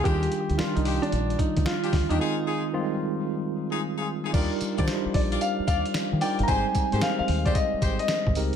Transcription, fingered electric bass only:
X:1
M:4/4
L:1/16
Q:"Swing 16ths" 1/4=112
K:Eb
V:1 name="Fingered electric bass" clef=bass
E,,2 z D,, z C,,2 z B,,,2 z D,, z2 D,, _F,, | z16 | E,, z2 E, z2 B,,,2 z2 E,, z2 E, z G,,, | A,,, z2 A,, z2 E,,2 z2 A,,, z2 A,,, _D,, z |]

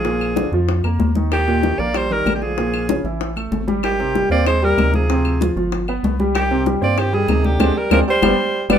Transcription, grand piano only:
X:1
M:4/4
L:1/8
Q:1/4=191
K:Bbmix
V:1 name="Grand piano"
[B,,B,]2 [D,D] [F,F]2 [B,B]2 [E,E]- | [E,E] [B,,B,] [E,E] [B,B]2 [E,E] [D,D]2 | [B,,B,]2 [_D,_D] [=E,=E]2 [=A,=A]2 [G,G]- | [G,G] [C,C] [G,G] [Cc]2 [G,G] [C,E]2 |
[C,C]2 [F,F] [F,F]2 [=B,=B]2 [G,G]- | [G,G] [C,C] [G,G] [Cc]2 [G,G] [C,E]2 | [A,CD] z [A,CD] z [G,=B,D] z2 [G,B,D] |]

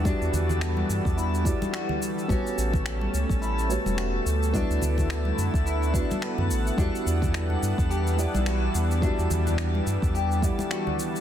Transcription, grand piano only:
X:1
M:4/4
L:1/8
Q:"Swing 16ths" 1/4=107
K:Edor
V:1 name="Grand piano"
[G,EFd]4- [G,EFd] [G,EFd]3 | [B,FGc]4- [B,FGc] [G,B,Fc]3 | [B,EFd]4- [B,EFd] [B,EFd]3 | [G,EFd]4- [G,EFd] [G,Edf]3 |
[G,EFd]4- [G,EFd] [G,Edf]3 |]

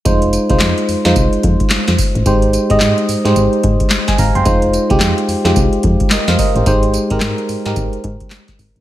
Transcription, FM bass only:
X:1
M:4/4
L:1/16
Q:"Swing 16ths" 1/4=109
K:Fm
V:1 name="FM bass" clef=bass
F,,,3 C,, F,, z F,, F,, C,, z F,, z2 F,, z =A,,, | A,,,3 A,,, A,, z A,, A,, A,,, z A,, z3 A,,, _G,,, | F,,,3 C,, F,, z F,, F,, C,, z F,, z2 F,, z =A,,, | A,,,3 A,,, A,, z A,, A,, A,,, z A,, z3 A,,, =A,,, |]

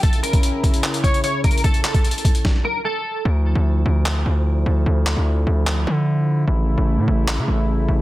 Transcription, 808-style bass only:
X:1
M:4/4
L:1/16
Q:1/4=149
K:Dm
V:1 name="808-style bass" clef=bass
z16 | z16 | D,,3 D,,3 D,,4 D,,4 D,,2 | D,,3 D,,3 D,,4 D,6 |
A,,,3 A,,,2 A,, A,,,3 ^C, A,,,4 A,,,2 |]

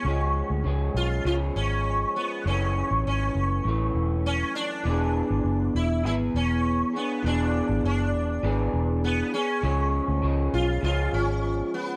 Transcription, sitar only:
X:1
M:4/4
L:1/8
Q:1/4=100
K:C#phr
V:1 name="Sitar"
C3 ^E E C2 B, | C2 C4 C D- | D3 E E C2 B, | D2 D4 B, C- |
C3 ^E E C2 B, |]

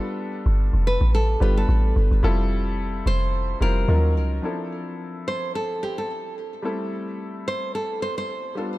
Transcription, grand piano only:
X:1
M:4/4
L:1/8
Q:"Swing 16ths" 1/4=109
K:Ddor
V:1 name="Grand piano"
[G,B,DFA]2 z3 [G,B,DFB]2 z | [G,CEFA]3 z2 [G,CEFc] [F,_G,_D_EF_B]2 | [F,CDEA]8 | [G,A,CEA]6- [G,A,CEA] [G,B,DFA] |]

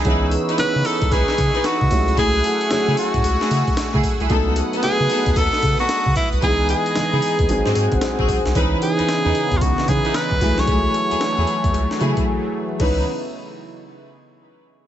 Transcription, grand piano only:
X:1
M:4/4
L:1/16
Q:"Swing 16ths" 1/4=113
K:C#m
V:1 name="Grand piano"
[E,B,CDG]3 z [E,B,CDG]6 z4 [F,A,CE=G^G]2- | [F,A,CE=G^G]2 z2 [F,A,CEG]6 z6 | [F,A,B,DA]3 z [F,A,B,DB]6 z6 | [E,G,B,DG]3 z [E,G,B,DG]4 [F,G,^B,DG]6 z2 |
[E,CDB]6 z4 [E,CDB]4 [F,G,A,EG]2- | [F,G,A,EG]4 z6 [F,A,EG]4 z2 | [E,CDB]2 z12 z2 |]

